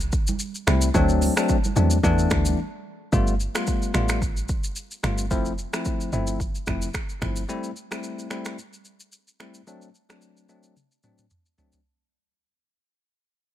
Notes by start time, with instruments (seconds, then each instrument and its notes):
Already playing: log drum bass C2
0.00 shaker
0.12 log drum bass A1, kick, shaker
0.27 high conga, shaker
0.39 shaker
0.55 shaker
0.67 log drum bass C2, tine electric piano G3 A3 C4 E4, finger snap, cross-stick, high conga, shaker
0.82 shaker
0.94 log drum bass D2, tine electric piano F#3 A3 C4 D4, kick, low conga, shaker
1.09 shaker
1.22 open hi-hat, high conga, shaker
1.37 tine electric piano F#3 A3 C4 D4, finger snap, cross-stick, shaker
1.49 kick, shaker
1.64 high conga, shaker
1.76 log drum bass E2, tine electric piano F#3 A3 C4 D4, high conga, low conga, shaker
1.91 shaker
2.03 log drum bass E2, tine electric piano E3 A3 B3 D4, kick, low conga, shaker
2.19 shaker
2.30 log drum bass D2, finger snap, kick, cross-stick, high conga, shaker
2.46 high conga, shaker
3.12 log drum bass G1, tine electric piano G3 A3 B3 F4, kick, shaker
3.27 shaker
3.40 shaker
3.55 tine electric piano G3 A3 B3 F4, finger snap, cross-stick, shaker
3.67 kick, shaker
3.82 shaker
3.94 log drum bass A1, tine electric piano G3 A3 B3 F4, finger snap, cross-stick, shaker
4.09 finger snap, cross-stick, shaker
4.22 kick, shaker
4.37 shaker
4.49 log drum bass G1, kick, shaker
4.64 shaker
4.76 shaker
4.91 shaker
5.03 log drum bass G1, tine electric piano G3 A3 B3 F4, finger snap, cross-stick, shaker
5.18 shaker
5.31 log drum bass F1, tine electric piano F3 A3 C4 E4, kick, shaker
5.45 shaker
5.58 shaker
5.73 tine electric piano F3 A3 C4 E4, finger snap, cross-stick, shaker
5.85 kick, shaker
6.01 shaker
6.13 log drum bass G1, tine electric piano F3 A3 C4 E4, shaker
6.27 shaker
6.40 kick, shaker
6.55 shaker
6.67 log drum bass F1, tine electric piano F3 A3 C4 E4, finger snap, kick, cross-stick, shaker
6.82 shaker
6.94 finger snap, kick, cross-stick, shaker
7.09 shaker
7.22 log drum bass G1, tine electric piano F3 A3 C4 E4, finger snap, kick, cross-stick, shaker
7.36 shaker
7.49 tine electric piano G3 A3 C4 E4, shaker
7.64 shaker
7.77 shaker
7.91 tine electric piano G3 A3 C4 E4, finger snap, cross-stick, shaker
8.03 shaker
8.19 shaker
8.31 tine electric piano G3 A3 C4 E4, finger snap, cross-stick, shaker
8.45 finger snap, cross-stick, shaker
8.59 shaker
8.73 shaker
8.85 shaker
9.00 shaker
9.12 shaker
9.28 shaker
9.40 tine electric piano G3 A3 C4 E4, finger snap, cross-stick, shaker
9.54 shaker
9.67 tine electric piano F#3 A3 C4 D4, shaker
9.82 shaker
9.95 shaker
10.09 tine electric piano F#3 A3 C4 D4, finger snap, cross-stick, shaker
10.22 shaker
10.37 shaker
10.49 tine electric piano F#3 A3 C4 D4, shaker
10.63 shaker
10.76 high tom, shaker
10.91 shaker
11.03 tine electric piano F#3 A3 C4 D4, mid tom, shaker
11.18 mid tom, shaker
11.30 mid tom, shaker
11.46 shaker
11.58 tine electric piano F#3 A3 C4 D4, floor tom, shaker
11.73 floor tom, shaker